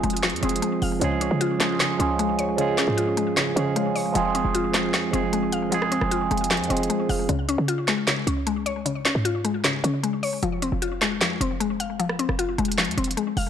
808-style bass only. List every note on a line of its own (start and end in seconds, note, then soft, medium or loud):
0.03 0.34 F1 loud
0.33 0.42 F2 loud
0.43 0.62 F1 loud
0.82 1.01 F1 loud
1.01 1.30 C#2 loud
1.31 1.97 C#3 loud
2.00 2.84 C#2 loud
2.88 3.54 G#2 loud
3.56 4.13 C#3 loud
4.15 4.43 F1 loud
4.45 4.95 F1 loud
4.94 5.12 F2 medium
5.13 5.98 F1 loud
6.02 6.30 F1 loud
6.31 6.62 F1 loud
6.60 6.70 F2 loud
6.70 6.89 F1 loud
7.09 7.28 F1 loud
7.29 7.57 C#2 loud
7.58 8.24 C#3 loud
8.27 9.12 C#2 loud
9.15 9.81 G#2 loud
9.84 10.40 C#3 loud
10.43 10.71 F1 loud
10.72 11.23 F1 loud
11.21 11.40 F2 loud
11.41 12.25 F1 loud
12.29 12.57 F1 loud
12.58 12.89 F1 loud
12.88 12.97 F2 medium
12.97 13.16 F1 loud
13.37 13.50 F1 loud